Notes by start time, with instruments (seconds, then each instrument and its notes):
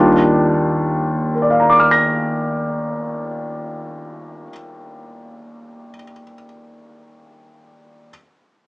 Already playing: upright bass D#2, grand piano D#2 D#3 G3 D4 F4
1.35 grand piano A#4
1.42 grand piano D5
1.50 grand piano F5
1.60 grand piano A#5
1.70 grand piano D6
1.80 grand piano F6
1.91 grand piano A#6